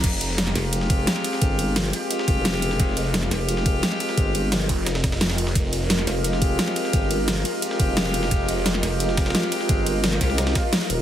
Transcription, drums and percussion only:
0.04 kick, closed hi-hat, crash, ride
0.21 closed hi-hat, ride
0.38 snare, closed hi-hat, ride
0.47 snare
0.55 snare, closed hi-hat, ride
0.73 closed hi-hat, ride
0.81 snare
0.90 kick, closed hi-hat, ride
1.07 snare, closed hi-hat, ride
1.16 snare
1.24 snare, closed hi-hat, ride
1.33 snare
1.42 kick, closed hi-hat, ride
1.59 closed hi-hat, ride
1.76 snare, closed hi-hat, open hi-hat
1.93 closed hi-hat, ride
2.11 closed hi-hat, ride
2.19 snare
2.28 kick, closed hi-hat, ride
2.45 snare, closed hi-hat, ride
2.54 snare
2.62 closed hi-hat, ride
2.71 snare
2.80 kick, closed hi-hat, ride
2.97 closed hi-hat, ride
3.14 snare, closed hi-hat, ride
3.23 snare
3.31 snare, closed hi-hat, ride
3.48 closed hi-hat, ride
3.57 snare
3.66 kick, closed hi-hat, ride
3.83 snare, closed hi-hat, ride
3.92 snare
4.00 snare, closed hi-hat, ride
4.09 snare
4.17 kick, closed hi-hat, ride
4.35 closed hi-hat, ride
4.52 snare, closed hi-hat, open hi-hat
4.69 kick, closed hi-hat, ride
4.86 snare, closed hi-hat, ride
4.95 snare, ride
5.04 kick, snare, closed hi-hat, ride
5.12 snare, ride
5.21 snare, closed hi-hat, ride
5.30 snare, ride
5.38 closed hi-hat, ride
5.47 snare
5.55 kick, closed hi-hat, ride
5.73 closed hi-hat, ride
5.90 snare, closed hi-hat, ride
5.99 snare
6.07 snare, closed hi-hat, ride
6.24 closed hi-hat, ride
6.33 snare
6.42 kick, closed hi-hat, ride
6.59 snare, closed hi-hat, ride
6.68 snare
6.76 snare, closed hi-hat, ride
6.85 snare
6.93 kick, closed hi-hat, ride
7.11 closed hi-hat, ride
7.28 snare, closed hi-hat, open hi-hat
7.45 closed hi-hat, ride
7.62 closed hi-hat, ride
7.71 snare
7.80 kick, closed hi-hat, ride
7.97 snare, closed hi-hat, ride
8.06 snare
8.14 closed hi-hat, ride
8.23 snare
8.31 kick, closed hi-hat, ride
8.49 closed hi-hat, ride
8.66 snare, closed hi-hat, ride
8.74 snare
8.83 snare, closed hi-hat, ride
9.00 closed hi-hat, ride
9.09 snare
9.17 kick, snare, closed hi-hat, ride
9.26 snare, ride
9.30 snare, ride
9.35 snare, closed hi-hat, ride
9.43 snare
9.52 snare, closed hi-hat, ride
9.61 snare
9.69 kick, closed hi-hat, ride
9.86 closed hi-hat, ride
10.04 snare, closed hi-hat, open hi-hat
10.12 snare
10.21 kick, snare, closed hi-hat, ride
10.30 snare
10.38 snare, closed hi-hat, ride
10.47 snare, ride
10.55 kick, snare, closed hi-hat, ride
10.73 snare, closed hi-hat, ride
10.81 snare
10.90 closed hi-hat, ride

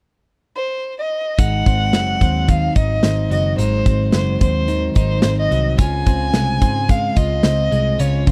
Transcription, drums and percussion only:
1.39 kick, closed hi-hat
1.66 kick, closed hi-hat
1.93 snare, closed hi-hat
2.21 kick, closed hi-hat
2.48 kick, closed hi-hat
2.76 kick, closed hi-hat
3.03 snare, closed hi-hat
3.31 closed hi-hat
3.59 closed hi-hat
3.86 kick, closed hi-hat
4.12 snare, closed hi-hat
4.41 kick, closed hi-hat
4.68 closed hi-hat
4.95 kick, closed hi-hat
5.22 snare, closed hi-hat
5.52 closed hi-hat
5.78 kick, closed hi-hat
6.06 kick, closed hi-hat
6.34 snare, closed hi-hat
6.61 kick, closed hi-hat
6.89 kick, closed hi-hat
7.16 kick, closed hi-hat
7.43 snare, closed hi-hat
7.72 closed hi-hat
7.99 closed hi-hat
8.27 kick, closed hi-hat

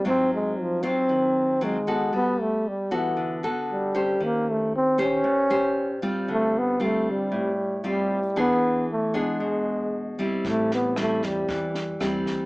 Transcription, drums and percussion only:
10.45 kick, snare
10.71 snare
10.96 cross-stick, snare
11.23 kick, snare
11.49 kick, snare
11.75 snare
12.01 cross-stick, snare
12.26 kick, snare

